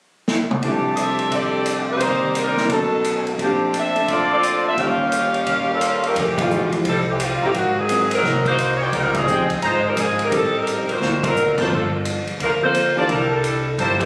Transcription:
0.28 snare
0.51 mid tom
0.62 grand piano F2 C3 G3 A3 D4 E4, saxophone section E3 A3 C4 G4, trumpet section F4 G4 D5 E5 A5, kick, ride
0.94 saxophone section D#5, hi-hat pedal, ride
0.98 saxophone section C4 G4 A4 E5
1.19 ride
1.31 saxophone section C4 G4 A4 D5, trumpet section E5 G5 A5, kick, ride
1.66 hi-hat pedal, ride
1.91 saxophone section A#3 D#4 G4 C5
1.96 grand piano C3 G3
2.00 grand piano A#3 D5, trumpet section C5 D5 A#5, kick, ride
2.06 grand piano D#3
2.35 saxophone section G3 D4 D#4 A#4, hi-hat pedal, ride
2.57 snare
2.67 grand piano B2 F#3 A3 C#4, trumpet section D#4 B4 C#5 A5, kick, ride
2.72 saxophone section F#3 C#4 D#4 A4, grand piano D#4
3.04 hi-hat pedal, ride
3.27 ride
3.34 grand piano A#2 F3
3.39 grand piano A3 C4, saxophone section C4 D4 G4, trumpet section D4 F4 C5 A5, kick, ride
3.43 saxophone section F3, grand piano D4
3.74 saxophone section D4 A4 C5 E5, hi-hat pedal, ride
3.95 grand piano A3 D4 E5, ride
4.08 saxophone section C4 F4 A4 D5, trumpet section C5 D5 C6, kick, ride
4.32 saxophone section C4 F4 A4 D5
4.43 hi-hat pedal, ride
4.68 saxophone section C4 F4 A4 E5
4.75 grand piano D#2 D#3 G3 C#4, saxophone section C#4 A#4, trumpet section F4 C#5 D#5 G5, kick, ride
4.79 grand piano F4, saxophone section G4 F5
5.12 hi-hat pedal, ride
5.34 trumpet section D#5 F5 G5, ride
5.46 kick, ride
5.64 grand piano G4, trumpet section A#5
5.72 saxophone section G3 C#4 F4 A4, grand piano A#4
5.81 grand piano C5, trumpet section C6, hi-hat pedal, ride
5.90 grand piano C#5
5.98 grand piano D#5, trumpet section C#6
6.03 saxophone section G3 C#4 F4 A#4, grand piano F5, ride
6.15 upright bass F1, saxophone section C4 G4, kick, ride
6.20 saxophone section E3 A3
6.38 saxophone section G3 A3 C4 F4, kick, ride
6.50 grand piano E3 G#3 D#4 F#4, hi-hat pedal
6.72 grand piano F3 A3 E4 G4, ride
6.85 upright bass C2, saxophone section G3 A4, kick, ride
6.89 saxophone section C4 E4
7.09 saxophone section E3 A3 C4 G4
7.20 saxophone section G3 A3 C4 F4, hi-hat pedal, ride
7.41 upright bass A1, saxophone section E3 A3 C4 G4, trumpet section F#4 C5 F5 A#5
7.54 upright bass G#1, saxophone section D#3 A#3 C4 F#4, kick, ride
7.78 saxophone section F#3 C4 D#4 G#4
7.89 grand piano F#3 C4 F4 A#4, hi-hat pedal, ride
8.11 saxophone section F#3 C4 D#4 A#4, ride
8.23 upright bass C2, kick, snare
8.45 saxophone section A#3 D#4 F#4 C5, kick, ride
8.58 hi-hat pedal, ride
8.75 saxophone section C#5
8.81 saxophone section A#3 D#4 F#4 D5, trumpet section F4 C5 D#5 G5
8.91 upright bass C#2, saxophone section G3 C4 D#4 A4 A#4, kick, ride
9.14 saxophone section F3 C4 D#4 G#4, kick, ride
9.28 grand piano F3 C4 D#4 G4, trumpet section F4 C5 D#5 G5, hi-hat pedal
9.38 upright bass D#2
9.50 upright bass D2, ride
9.62 upright bass G#1, saxophone section G#3 D#4 F4 C5, trumpet section F4 C5 D#5 A#5, kick, ride
9.87 saxophone section G3 C4 D#4 A#4
9.96 upright bass G#1, saxophone section F3 C4 D#4 G#4, hi-hat pedal, ride
10.19 saxophone section G3, ride
10.23 saxophone section C4 D#4 A#4
10.31 upright bass A1, grand piano G3 C4 D#4 G4, saxophone section G3 C4 D#4 A4, kick, ride
10.57 saxophone section G3 C4 D#4 A#4
10.67 hi-hat pedal, ride
10.88 saxophone section A#3 F4 F#4 C5, muted upright bass stroke, ride
11.00 upright bass D2, snare
11.23 saxophone section F#3 C4 F4 A#4, kick, ride
11.36 hi-hat pedal
11.57 grand piano F3 A#3 C4 A4, saxophone section A#3 F4 F#4 C5, trumpet section F4 A#4 C5 A5, kick, crash
11.70 upright bass G1, saxophone section F3 A#3 D4 A4, kick
12.05 hi-hat pedal, ride
12.27 muted upright bass stroke, ride
12.40 upright bass D2, saxophone section F3 A3 D4 A#4, kick, ride
12.62 grand piano F3 A#3 C4 A4, saxophone section A#3 F4 A4 C5
12.74 hi-hat pedal, ride
12.96 grand piano E3 A#3 D4 G4, saxophone section A#3 F4 A4 D5, trumpet section E4 A#4 D5 A5
13.09 upright bass C2, saxophone section G3 D4 E4 A#4, kick, ride
13.32 saxophone section G3 D4 E4 A4
13.44 hi-hat pedal, ride
13.78 upright bass G1, saxophone section A#3 E4 G4 C5, trumpet section E4 A#4 D5 A5, kick, ride
14.00 grand piano E3 A#3 D4 A4, saxophone section E3 A#3 D4 G4, kick, ride

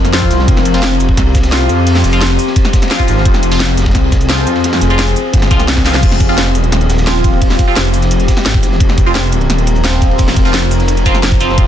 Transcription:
Already playing: detuned saw bass F2, synth drone F3 C4 A#4
0.05 snare, closed hi-hat, ride, shaker
0.13 synth stab F3 C4 F4, snare, closed hi-hat, ride
0.22 kick
0.30 detuned saw bass C2, snare, closed hi-hat, ride, shaker
0.40 snare
0.48 detuned saw bass F1, synth drone G4, kick, closed hi-hat, ride
0.57 snare
0.65 detuned saw bass F1, closed hi-hat, ride, shaker
0.74 synth stab F3 C4 F4, closed hi-hat
0.83 snare, closed hi-hat
1.00 detuned saw bass F1, closed hi-hat, ride, shaker
1.09 kick
1.17 detuned saw bass C2, kick, snare, closed hi-hat, ride
1.35 kick, snare, closed hi-hat, ride, shaker
1.43 snare, closed hi-hat, ride, shaker
1.52 synth stab F3 C4 F4, snare, closed hi-hat, ride
1.62 snare
1.69 detuned saw bass F2, snare, closed hi-hat, ride, shaker
1.78 ride
1.87 closed hi-hat, open hi-hat
1.95 snare
2.04 detuned saw bass F1, snare, closed hi-hat, ride, shaker
2.13 synth stab F3 C4 F4, closed hi-hat
2.21 snare, closed hi-hat, ride
2.39 open hi-hat, ride, shaker
2.47 snare
2.56 kick, closed hi-hat, ride
2.65 snare
2.73 kick, snare, closed hi-hat, ride, shaker
2.82 snare, closed hi-hat, ride, shaker
2.87 snare, ride
2.91 synth stab F3 C4 F4, snare, closed hi-hat
2.99 kick
3.08 detuned saw bass G#1, snare, closed hi-hat, ride, shaker
3.17 snare
3.25 detuned saw bass F1, synth drone G#4, kick, closed hi-hat, ride
3.34 snare
3.43 detuned saw bass F1, closed hi-hat, ride, shaker
3.51 synth stab F3 C4 F4, closed hi-hat
3.60 snare, closed hi-hat, ride
3.77 detuned saw bass F1, snare, closed hi-hat, ride, shaker
3.82 snare, ride
3.86 kick, snare, ride
3.90 snare, ride
3.95 detuned saw bass C2, kick, snare, closed hi-hat, ride
4.12 kick, snare, closed hi-hat, ride, shaker
4.21 closed hi-hat, shaker
4.29 synth stab F3 C4 F4, snare, closed hi-hat, ride
4.38 snare, ride
4.47 detuned saw bass F2, closed hi-hat, shaker
4.55 snare, ride
4.64 snare, closed hi-hat, ride
4.73 snare
4.81 detuned saw bass F1, snare, closed hi-hat, ride, shaker
4.90 synth stab F3 C4 F4, closed hi-hat
4.98 snare, closed hi-hat, ride
5.08 shaker
5.16 open hi-hat, shaker
5.33 detuned saw bass G1, kick, snare, closed hi-hat, ride
5.37 snare, ride
5.42 snare, closed hi-hat, ride
5.47 snare, closed hi-hat, ride, shaker
5.51 detuned saw bass C2, synth stab F3 C4 F4, kick, snare, ride
5.60 snare, closed hi-hat, ride, shaker
5.68 snare, closed hi-hat, ride
5.77 kick, snare, ride
5.86 synth stab F3 C4 F4, snare, closed hi-hat, ride, shaker
5.94 snare, ride
6.03 detuned saw bass F1, synth drone F3 C4 G4, kick, closed hi-hat, crash, ride
6.12 snare
6.20 detuned saw bass F1, kick, closed hi-hat, ride, shaker
6.29 synth stab F3 C4 F4
6.38 snare, closed hi-hat, ride
6.55 closed hi-hat, ride, shaker
6.64 closed hi-hat
6.72 detuned saw bass D#1, snare, closed hi-hat, ride
6.81 closed hi-hat
6.89 snare, closed hi-hat, ride, shaker
6.97 snare, ride, shaker
7.06 synth stab F3 C4 F4, snare, closed hi-hat, ride
7.15 snare
7.24 kick, snare, closed hi-hat, ride, shaker
7.33 ride
7.42 kick, closed hi-hat, open hi-hat
7.50 snare
7.59 kick, snare, closed hi-hat, ride, shaker
7.68 synth stab F3 C4 F4
7.76 detuned saw bass F1, snare, closed hi-hat, ride
7.93 open hi-hat, ride, shaker
8.02 snare, closed hi-hat
8.11 closed hi-hat, ride
8.20 closed hi-hat
8.28 kick, snare, closed hi-hat, ride, shaker
8.37 snare, ride, shaker
8.41 snare, ride
8.45 detuned saw bass G#1, snare, closed hi-hat, ride
8.54 kick
8.63 snare, closed hi-hat, ride, shaker
8.72 snare
8.80 detuned saw bass F1, synth drone A#4, kick, closed hi-hat, ride
8.89 snare
8.98 detuned saw bass F1, kick, closed hi-hat, ride, shaker
9.06 synth stab F3 C4 F4
9.15 snare, closed hi-hat, ride
9.32 closed hi-hat, ride, shaker
9.41 closed hi-hat
9.50 detuned saw bass D#1, snare, closed hi-hat, ride
9.58 closed hi-hat
9.67 closed hi-hat, ride, shaker
9.76 ride, shaker
9.84 synth stab F3 C4 F4, snare, closed hi-hat, ride
9.93 snare
10.01 kick, snare, closed hi-hat, ride, shaker
10.11 ride
10.18 kick, closed hi-hat, open hi-hat
10.28 snare
10.36 detuned saw bass F1, kick, snare, closed hi-hat, ride, shaker
10.45 synth stab F3 C4 F4
10.54 snare, closed hi-hat, ride
10.71 open hi-hat, ride, shaker
10.80 snare, closed hi-hat
10.88 closed hi-hat, ride
10.97 closed hi-hat
11.06 synth stab F3 C4 F4, kick, snare, closed hi-hat, ride, shaker
11.14 snare, ride, shaker
11.23 snare, closed hi-hat, ride
11.32 kick
11.40 synth stab F3 C4 F4, snare, closed hi-hat, ride, shaker
11.49 snare
11.58 detuned saw bass F1, synth drone G4, kick, closed hi-hat, ride

